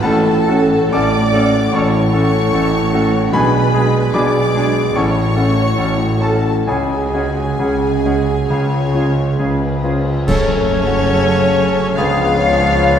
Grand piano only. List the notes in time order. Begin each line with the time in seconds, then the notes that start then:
0.03 A1 A2 A4 F#5 A5
0.48 A3 C#4 F#4
0.92 A1 A2 D5 A5 D6
1.33 A3 C#4 F#4
1.73 A1 A2 C#5 A5 C#6
2.14 A3 C#4 F#4
2.53 A1 A2
2.94 A3 C#4 F#4
3.32 B1 B2 B4 G#5 B5
3.74 G#3 D4 G#4
4.14 B1 B2 D5 B5 D6
4.55 G#3 D4 G#4
4.95 A1 A2 C#5 A5 C#6
5.37 A3 C#4 F#4
5.78 A1 A2
6.22 A3 C#4 F#4 A4 A5
6.67 C#2 C#3 G#4 C#5 G#5
7.14 G#3 C#4 F#4
7.59 C#2 C#3
8.05 G#3 C#4 F#4
8.50 C#2 C#3
8.94 G#3 C#4 F4
9.39 C#2 C#3
9.83 G#3 C#4 F4
10.29 F#2
10.57 A3
10.87 F#4
11.14 A4
11.43 C#5
11.69 A4
11.98 C#2
12.25 B3
12.53 G#4
12.83 B4